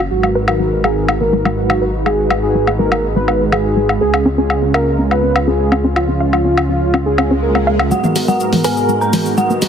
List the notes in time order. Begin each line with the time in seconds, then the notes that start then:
0.11 G#1 G#3 D#4 F#4 A#4 B4
0.23 G#3, low woodblock
0.35 B4
0.48 F#4, low woodblock
0.60 G#3
0.84 G#3 G#4, low woodblock
1.08 G#3, low woodblock
1.21 A#3 A#4
1.33 G#3
1.45 G#3, low woodblock
1.57 F#4
1.70 G#3, low woodblock
1.82 B4
2.06 G#3 G#4, low woodblock
2.30 G#3, low woodblock
2.43 G#4
2.55 G#3
2.67 A#3, low woodblock
2.79 G#3 A#4
2.92 G#3, low woodblock
3.16 G#3 B4
3.28 B4, low woodblock
3.52 G#3 G#4, low woodblock
3.77 G#3
3.89 low woodblock
4.01 C#2 C#4 F4 G#4
4.14 D#4, low woodblock
4.26 C#4
4.38 C#4 G#4
4.50 low woodblock
4.62 C#4
4.74 A#4 F5, low woodblock
4.99 C#4
5.11 B4, low woodblock
5.23 C#4
5.36 low woodblock
5.47 C#4 G#4
5.60 D#4
5.72 C#4, low woodblock
5.84 C#4
5.96 F4, low woodblock
6.09 C#4
6.20 F5
6.33 F4, low woodblock
6.45 C#4
6.57 low woodblock
6.69 C#4 F4
6.94 C#4, swell, low woodblock
7.06 D#4 G#4
7.18 C#4, low woodblock
7.31 C#4
7.42 A#4
7.55 C#4, low woodblock
7.67 F5
7.79 low woodblock
7.91 G#2 G#3 B3 F#4 A#4 F#5, riser, shaker
8.04 A#3, mid tom, shaker
8.16 G#3, open hi-hat, shaker
8.28 G#3 F#4 F#5, shaker
8.40 shaker
8.53 G#3, open hi-hat, mid tom, shaker
8.64 G#4 B4 G#5, open hi-hat, shaker
8.77 shaker
8.89 G#3, shaker
9.01 A#4 A#5, shaker
9.13 G#3, open hi-hat, mid tom, shaker
9.26 shaker
9.37 G#3 F#4 F#5, shaker
9.50 A#3, shaker
9.62 G#3, open hi-hat, shaker